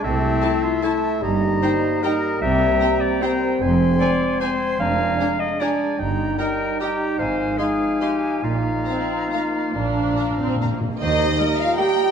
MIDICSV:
0, 0, Header, 1, 13, 480
1, 0, Start_track
1, 0, Key_signature, -3, "major"
1, 0, Tempo, 397614
1, 49, Time_signature, 3, 2, 24, 8
1, 9173, Tempo, 429799
1, 12533, Tempo, 387347
1, 14398, End_track
2, 0, Start_track
2, 0, Title_t, "Flute"
2, 0, Program_c, 0, 73
2, 41, Note_on_c, 0, 81, 66
2, 985, Note_off_c, 0, 81, 0
2, 992, Note_on_c, 0, 81, 67
2, 1462, Note_off_c, 0, 81, 0
2, 1476, Note_on_c, 0, 82, 66
2, 2433, Note_off_c, 0, 82, 0
2, 2458, Note_on_c, 0, 82, 65
2, 2903, Note_off_c, 0, 82, 0
2, 2910, Note_on_c, 0, 82, 73
2, 3868, Note_off_c, 0, 82, 0
2, 3907, Note_on_c, 0, 82, 65
2, 4360, Note_off_c, 0, 82, 0
2, 4382, Note_on_c, 0, 84, 65
2, 5317, Note_off_c, 0, 84, 0
2, 5347, Note_on_c, 0, 84, 66
2, 5819, Note_on_c, 0, 82, 65
2, 5837, Note_off_c, 0, 84, 0
2, 6435, Note_off_c, 0, 82, 0
2, 6772, Note_on_c, 0, 82, 55
2, 7207, Note_off_c, 0, 82, 0
2, 7254, Note_on_c, 0, 82, 59
2, 7711, Note_off_c, 0, 82, 0
2, 7719, Note_on_c, 0, 82, 54
2, 8216, Note_off_c, 0, 82, 0
2, 8237, Note_on_c, 0, 82, 56
2, 8712, Note_on_c, 0, 80, 58
2, 8730, Note_off_c, 0, 82, 0
2, 9166, Note_off_c, 0, 80, 0
2, 9174, Note_on_c, 0, 80, 54
2, 10117, Note_on_c, 0, 82, 53
2, 10134, Note_off_c, 0, 80, 0
2, 11562, Note_off_c, 0, 82, 0
2, 11568, Note_on_c, 0, 82, 46
2, 12773, Note_off_c, 0, 82, 0
2, 13064, Note_on_c, 0, 82, 58
2, 14398, Note_off_c, 0, 82, 0
2, 14398, End_track
3, 0, Start_track
3, 0, Title_t, "Violin section"
3, 0, Program_c, 1, 48
3, 505, Note_on_c, 1, 81, 49
3, 601, Note_off_c, 1, 81, 0
3, 1004, Note_on_c, 1, 81, 62
3, 1101, Note_off_c, 1, 81, 0
3, 1957, Note_on_c, 1, 82, 51
3, 2054, Note_off_c, 1, 82, 0
3, 2457, Note_on_c, 1, 82, 64
3, 2554, Note_off_c, 1, 82, 0
3, 3396, Note_on_c, 1, 82, 56
3, 3493, Note_off_c, 1, 82, 0
3, 3905, Note_on_c, 1, 82, 58
3, 4002, Note_off_c, 1, 82, 0
3, 4830, Note_on_c, 1, 80, 55
3, 4927, Note_off_c, 1, 80, 0
3, 5337, Note_on_c, 1, 80, 54
3, 5434, Note_off_c, 1, 80, 0
3, 6282, Note_on_c, 1, 82, 51
3, 6379, Note_off_c, 1, 82, 0
3, 6762, Note_on_c, 1, 82, 60
3, 6858, Note_off_c, 1, 82, 0
3, 7715, Note_on_c, 1, 82, 47
3, 7812, Note_off_c, 1, 82, 0
3, 8216, Note_on_c, 1, 82, 49
3, 8312, Note_off_c, 1, 82, 0
3, 9158, Note_on_c, 1, 84, 45
3, 9248, Note_off_c, 1, 84, 0
3, 9634, Note_on_c, 1, 84, 48
3, 9724, Note_off_c, 1, 84, 0
3, 10580, Note_on_c, 1, 82, 40
3, 10669, Note_off_c, 1, 82, 0
3, 11096, Note_on_c, 1, 82, 45
3, 11186, Note_off_c, 1, 82, 0
3, 12039, Note_on_c, 1, 82, 41
3, 12128, Note_off_c, 1, 82, 0
3, 12541, Note_on_c, 1, 82, 43
3, 12641, Note_off_c, 1, 82, 0
3, 13035, Note_on_c, 1, 75, 90
3, 13701, Note_off_c, 1, 75, 0
3, 13744, Note_on_c, 1, 77, 86
3, 13977, Note_on_c, 1, 79, 79
3, 13989, Note_off_c, 1, 77, 0
3, 14398, Note_off_c, 1, 79, 0
3, 14398, End_track
4, 0, Start_track
4, 0, Title_t, "Violin section"
4, 0, Program_c, 2, 48
4, 513, Note_on_c, 2, 81, 54
4, 610, Note_off_c, 2, 81, 0
4, 995, Note_on_c, 2, 81, 56
4, 1091, Note_off_c, 2, 81, 0
4, 1964, Note_on_c, 2, 79, 53
4, 2060, Note_off_c, 2, 79, 0
4, 2456, Note_on_c, 2, 79, 56
4, 2552, Note_off_c, 2, 79, 0
4, 3396, Note_on_c, 2, 79, 60
4, 3493, Note_off_c, 2, 79, 0
4, 3892, Note_on_c, 2, 79, 57
4, 3989, Note_off_c, 2, 79, 0
4, 4834, Note_on_c, 2, 80, 54
4, 4931, Note_off_c, 2, 80, 0
4, 5322, Note_on_c, 2, 80, 65
4, 5419, Note_off_c, 2, 80, 0
4, 6273, Note_on_c, 2, 80, 47
4, 6369, Note_off_c, 2, 80, 0
4, 6783, Note_on_c, 2, 80, 56
4, 6879, Note_off_c, 2, 80, 0
4, 7721, Note_on_c, 2, 79, 52
4, 7818, Note_off_c, 2, 79, 0
4, 8232, Note_on_c, 2, 79, 58
4, 8328, Note_off_c, 2, 79, 0
4, 9175, Note_on_c, 2, 77, 49
4, 9265, Note_off_c, 2, 77, 0
4, 9639, Note_on_c, 2, 77, 47
4, 9728, Note_off_c, 2, 77, 0
4, 10611, Note_on_c, 2, 77, 42
4, 10701, Note_off_c, 2, 77, 0
4, 11107, Note_on_c, 2, 77, 50
4, 11197, Note_off_c, 2, 77, 0
4, 12050, Note_on_c, 2, 77, 41
4, 12139, Note_off_c, 2, 77, 0
4, 12543, Note_on_c, 2, 77, 41
4, 12642, Note_off_c, 2, 77, 0
4, 13044, Note_on_c, 2, 75, 73
4, 13706, Note_off_c, 2, 75, 0
4, 13760, Note_on_c, 2, 77, 64
4, 13992, Note_off_c, 2, 77, 0
4, 13998, Note_on_c, 2, 79, 73
4, 14398, Note_off_c, 2, 79, 0
4, 14398, End_track
5, 0, Start_track
5, 0, Title_t, "Oboe"
5, 0, Program_c, 3, 68
5, 49, Note_on_c, 3, 76, 70
5, 988, Note_off_c, 3, 76, 0
5, 1003, Note_on_c, 3, 76, 66
5, 1467, Note_off_c, 3, 76, 0
5, 1483, Note_on_c, 3, 75, 64
5, 2437, Note_off_c, 3, 75, 0
5, 2470, Note_on_c, 3, 75, 66
5, 2920, Note_on_c, 3, 79, 67
5, 2938, Note_off_c, 3, 75, 0
5, 3892, Note_off_c, 3, 79, 0
5, 3903, Note_on_c, 3, 79, 67
5, 4373, Note_on_c, 3, 80, 66
5, 4391, Note_off_c, 3, 79, 0
5, 5324, Note_off_c, 3, 80, 0
5, 5331, Note_on_c, 3, 80, 61
5, 5784, Note_off_c, 3, 80, 0
5, 5791, Note_on_c, 3, 80, 67
5, 6408, Note_off_c, 3, 80, 0
5, 6774, Note_on_c, 3, 80, 64
5, 7232, Note_on_c, 3, 79, 60
5, 7250, Note_off_c, 3, 80, 0
5, 7702, Note_off_c, 3, 79, 0
5, 7709, Note_on_c, 3, 79, 60
5, 8195, Note_off_c, 3, 79, 0
5, 8202, Note_on_c, 3, 79, 58
5, 8679, Note_on_c, 3, 77, 51
5, 8697, Note_off_c, 3, 79, 0
5, 9159, Note_off_c, 3, 77, 0
5, 9166, Note_on_c, 3, 77, 53
5, 10091, Note_off_c, 3, 77, 0
5, 10104, Note_on_c, 3, 77, 54
5, 11532, Note_off_c, 3, 77, 0
5, 11558, Note_on_c, 3, 77, 55
5, 12767, Note_off_c, 3, 77, 0
5, 13037, Note_on_c, 3, 75, 63
5, 14398, Note_off_c, 3, 75, 0
5, 14398, End_track
6, 0, Start_track
6, 0, Title_t, "Clarinet"
6, 0, Program_c, 4, 71
6, 57, Note_on_c, 4, 60, 101
6, 764, Note_on_c, 4, 65, 85
6, 782, Note_off_c, 4, 60, 0
6, 1008, Note_on_c, 4, 64, 71
6, 1026, Note_off_c, 4, 65, 0
6, 1479, Note_off_c, 4, 64, 0
6, 1957, Note_on_c, 4, 72, 85
6, 2456, Note_on_c, 4, 70, 72
6, 2474, Note_off_c, 4, 72, 0
6, 2911, Note_off_c, 4, 70, 0
6, 2919, Note_on_c, 4, 76, 105
6, 3624, Note_on_c, 4, 74, 87
6, 3642, Note_off_c, 4, 76, 0
6, 3891, Note_on_c, 4, 72, 77
6, 3909, Note_off_c, 4, 74, 0
6, 4361, Note_off_c, 4, 72, 0
6, 4822, Note_on_c, 4, 74, 96
6, 5286, Note_off_c, 4, 74, 0
6, 5316, Note_on_c, 4, 72, 84
6, 5782, Note_off_c, 4, 72, 0
6, 5790, Note_on_c, 4, 77, 108
6, 6512, Note_on_c, 4, 75, 88
6, 6530, Note_off_c, 4, 77, 0
6, 6766, Note_on_c, 4, 74, 70
6, 6784, Note_off_c, 4, 75, 0
6, 7236, Note_off_c, 4, 74, 0
6, 7709, Note_on_c, 4, 70, 85
6, 8185, Note_off_c, 4, 70, 0
6, 8212, Note_on_c, 4, 67, 82
6, 8672, Note_off_c, 4, 67, 0
6, 8679, Note_on_c, 4, 72, 89
6, 9150, Note_on_c, 4, 68, 73
6, 9168, Note_off_c, 4, 72, 0
6, 9628, Note_off_c, 4, 68, 0
6, 9635, Note_on_c, 4, 67, 69
6, 10096, Note_off_c, 4, 67, 0
6, 10106, Note_on_c, 4, 65, 70
6, 12485, Note_off_c, 4, 65, 0
6, 13031, Note_on_c, 4, 72, 78
6, 13507, Note_on_c, 4, 70, 61
6, 13526, Note_off_c, 4, 72, 0
6, 13980, Note_on_c, 4, 67, 56
6, 13998, Note_off_c, 4, 70, 0
6, 14398, Note_off_c, 4, 67, 0
6, 14398, End_track
7, 0, Start_track
7, 0, Title_t, "French horn section"
7, 0, Program_c, 5, 60
7, 57, Note_on_c, 5, 64, 68
7, 65, Note_on_c, 5, 57, 69
7, 1458, Note_off_c, 5, 57, 0
7, 1470, Note_on_c, 5, 63, 62
7, 1475, Note_on_c, 5, 58, 61
7, 1483, Note_off_c, 5, 64, 0
7, 2719, Note_off_c, 5, 63, 0
7, 2925, Note_on_c, 5, 60, 77
7, 4352, Note_on_c, 5, 56, 74
7, 4359, Note_off_c, 5, 58, 0
7, 5751, Note_off_c, 5, 60, 0
7, 5813, Note_on_c, 5, 62, 60
7, 7185, Note_off_c, 5, 56, 0
7, 7218, Note_off_c, 5, 62, 0
7, 7244, Note_on_c, 5, 55, 62
7, 7244, Note_on_c, 5, 63, 64
7, 8668, Note_off_c, 5, 55, 0
7, 8697, Note_on_c, 5, 53, 59
7, 10094, Note_off_c, 5, 63, 0
7, 10108, Note_on_c, 5, 63, 54
7, 11534, Note_off_c, 5, 63, 0
7, 11567, Note_off_c, 5, 53, 0
7, 11592, Note_on_c, 5, 62, 53
7, 11593, Note_on_c, 5, 53, 52
7, 12787, Note_off_c, 5, 53, 0
7, 12812, Note_off_c, 5, 62, 0
7, 13043, Note_on_c, 5, 63, 76
7, 13705, Note_off_c, 5, 63, 0
7, 13776, Note_on_c, 5, 65, 75
7, 14005, Note_off_c, 5, 65, 0
7, 14011, Note_on_c, 5, 67, 75
7, 14398, Note_off_c, 5, 67, 0
7, 14398, End_track
8, 0, Start_track
8, 0, Title_t, "Bassoon"
8, 0, Program_c, 6, 70
8, 35, Note_on_c, 6, 57, 65
8, 1001, Note_off_c, 6, 57, 0
8, 1005, Note_on_c, 6, 57, 66
8, 1475, Note_on_c, 6, 55, 71
8, 1494, Note_off_c, 6, 57, 0
8, 2434, Note_off_c, 6, 55, 0
8, 2441, Note_on_c, 6, 55, 64
8, 2903, Note_off_c, 6, 55, 0
8, 2923, Note_on_c, 6, 55, 73
8, 3874, Note_off_c, 6, 55, 0
8, 3881, Note_on_c, 6, 55, 66
8, 4363, Note_on_c, 6, 60, 70
8, 4381, Note_off_c, 6, 55, 0
8, 5327, Note_off_c, 6, 60, 0
8, 5339, Note_on_c, 6, 60, 65
8, 5796, Note_on_c, 6, 62, 54
8, 5814, Note_off_c, 6, 60, 0
8, 6423, Note_off_c, 6, 62, 0
8, 6775, Note_on_c, 6, 62, 68
8, 7238, Note_on_c, 6, 63, 61
8, 7256, Note_off_c, 6, 62, 0
8, 7711, Note_off_c, 6, 63, 0
8, 7718, Note_on_c, 6, 63, 58
8, 8215, Note_off_c, 6, 63, 0
8, 8232, Note_on_c, 6, 63, 58
8, 8688, Note_off_c, 6, 63, 0
8, 8700, Note_on_c, 6, 63, 56
8, 9163, Note_off_c, 6, 63, 0
8, 9170, Note_on_c, 6, 63, 58
8, 10092, Note_off_c, 6, 63, 0
8, 10107, Note_on_c, 6, 63, 54
8, 11574, Note_on_c, 6, 62, 57
8, 11590, Note_off_c, 6, 63, 0
8, 12803, Note_off_c, 6, 62, 0
8, 13048, Note_on_c, 6, 55, 63
8, 14398, Note_off_c, 6, 55, 0
8, 14398, End_track
9, 0, Start_track
9, 0, Title_t, "Viola section"
9, 0, Program_c, 7, 48
9, 522, Note_on_c, 7, 64, 62
9, 619, Note_off_c, 7, 64, 0
9, 1006, Note_on_c, 7, 64, 56
9, 1103, Note_off_c, 7, 64, 0
9, 1968, Note_on_c, 7, 63, 53
9, 2065, Note_off_c, 7, 63, 0
9, 2472, Note_on_c, 7, 63, 58
9, 2569, Note_off_c, 7, 63, 0
9, 3392, Note_on_c, 7, 60, 52
9, 3489, Note_off_c, 7, 60, 0
9, 3878, Note_on_c, 7, 60, 63
9, 3975, Note_off_c, 7, 60, 0
9, 4834, Note_on_c, 7, 60, 56
9, 4931, Note_off_c, 7, 60, 0
9, 5331, Note_on_c, 7, 60, 57
9, 5427, Note_off_c, 7, 60, 0
9, 6273, Note_on_c, 7, 62, 57
9, 6370, Note_off_c, 7, 62, 0
9, 6783, Note_on_c, 7, 62, 58
9, 6879, Note_off_c, 7, 62, 0
9, 7718, Note_on_c, 7, 63, 50
9, 7815, Note_off_c, 7, 63, 0
9, 8229, Note_on_c, 7, 63, 45
9, 8325, Note_off_c, 7, 63, 0
9, 9165, Note_on_c, 7, 63, 47
9, 9255, Note_off_c, 7, 63, 0
9, 9644, Note_on_c, 7, 63, 40
9, 9733, Note_off_c, 7, 63, 0
9, 10583, Note_on_c, 7, 60, 62
9, 11057, Note_off_c, 7, 60, 0
9, 11099, Note_on_c, 7, 58, 50
9, 11564, Note_on_c, 7, 62, 60
9, 11567, Note_off_c, 7, 58, 0
9, 12286, Note_off_c, 7, 62, 0
9, 12295, Note_on_c, 7, 60, 67
9, 12533, Note_off_c, 7, 60, 0
9, 12538, Note_on_c, 7, 58, 47
9, 13030, Note_off_c, 7, 58, 0
9, 13503, Note_on_c, 7, 58, 49
9, 13508, Note_on_c, 7, 55, 52
9, 13602, Note_off_c, 7, 58, 0
9, 13607, Note_off_c, 7, 55, 0
9, 13990, Note_on_c, 7, 58, 53
9, 13992, Note_on_c, 7, 55, 53
9, 14089, Note_off_c, 7, 58, 0
9, 14091, Note_off_c, 7, 55, 0
9, 14398, End_track
10, 0, Start_track
10, 0, Title_t, "Timpani"
10, 0, Program_c, 8, 47
10, 11575, Note_on_c, 8, 46, 32
10, 11634, Note_off_c, 8, 46, 0
10, 11648, Note_on_c, 8, 46, 28
10, 11721, Note_off_c, 8, 46, 0
10, 11735, Note_on_c, 8, 46, 34
10, 11815, Note_off_c, 8, 46, 0
10, 11828, Note_on_c, 8, 46, 28
10, 11896, Note_off_c, 8, 46, 0
10, 11909, Note_on_c, 8, 46, 34
10, 11991, Note_off_c, 8, 46, 0
10, 12005, Note_on_c, 8, 46, 36
10, 12077, Note_off_c, 8, 46, 0
10, 12190, Note_on_c, 8, 46, 44
10, 12267, Note_off_c, 8, 46, 0
10, 12281, Note_on_c, 8, 46, 48
10, 12366, Note_off_c, 8, 46, 0
10, 12379, Note_on_c, 8, 46, 52
10, 12461, Note_off_c, 8, 46, 0
10, 12474, Note_on_c, 8, 46, 55
10, 12559, Note_off_c, 8, 46, 0
10, 12574, Note_on_c, 8, 46, 64
10, 12661, Note_off_c, 8, 46, 0
10, 12676, Note_on_c, 8, 46, 67
10, 12766, Note_off_c, 8, 46, 0
10, 12781, Note_on_c, 8, 46, 66
10, 12856, Note_off_c, 8, 46, 0
10, 12871, Note_on_c, 8, 46, 77
10, 12959, Note_off_c, 8, 46, 0
10, 14398, End_track
11, 0, Start_track
11, 0, Title_t, "Cello section"
11, 0, Program_c, 10, 48
11, 49, Note_on_c, 10, 48, 70
11, 437, Note_off_c, 10, 48, 0
11, 1484, Note_on_c, 10, 43, 76
11, 1879, Note_off_c, 10, 43, 0
11, 2920, Note_on_c, 10, 48, 78
11, 3306, Note_off_c, 10, 48, 0
11, 4365, Note_on_c, 10, 41, 75
11, 4752, Note_off_c, 10, 41, 0
11, 5790, Note_on_c, 10, 41, 73
11, 6186, Note_off_c, 10, 41, 0
11, 7238, Note_on_c, 10, 43, 62
11, 7633, Note_off_c, 10, 43, 0
11, 8684, Note_on_c, 10, 44, 63
11, 9084, Note_off_c, 10, 44, 0
11, 10105, Note_on_c, 10, 46, 56
11, 10504, Note_off_c, 10, 46, 0
11, 11561, Note_on_c, 10, 46, 52
11, 11951, Note_off_c, 10, 46, 0
11, 13039, Note_on_c, 10, 39, 75
11, 13426, Note_off_c, 10, 39, 0
11, 14398, End_track
12, 0, Start_track
12, 0, Title_t, "Tuba"
12, 0, Program_c, 11, 58
12, 13037, Note_on_c, 11, 39, 72
12, 13425, Note_off_c, 11, 39, 0
12, 14398, End_track
13, 0, Start_track
13, 0, Title_t, "Double bass section"
13, 0, Program_c, 12, 48
13, 38, Note_on_c, 12, 36, 68
13, 432, Note_off_c, 12, 36, 0
13, 1470, Note_on_c, 12, 31, 64
13, 1872, Note_off_c, 12, 31, 0
13, 2905, Note_on_c, 12, 36, 70
13, 3299, Note_off_c, 12, 36, 0
13, 4354, Note_on_c, 12, 29, 72
13, 4746, Note_off_c, 12, 29, 0
13, 5786, Note_on_c, 12, 29, 72
13, 6184, Note_off_c, 12, 29, 0
13, 7230, Note_on_c, 12, 31, 59
13, 7629, Note_off_c, 12, 31, 0
13, 8678, Note_on_c, 12, 32, 59
13, 9081, Note_off_c, 12, 32, 0
13, 10105, Note_on_c, 12, 34, 53
13, 10504, Note_off_c, 12, 34, 0
13, 11555, Note_on_c, 12, 34, 52
13, 11947, Note_off_c, 12, 34, 0
13, 13035, Note_on_c, 12, 39, 64
13, 13424, Note_off_c, 12, 39, 0
13, 14398, End_track
0, 0, End_of_file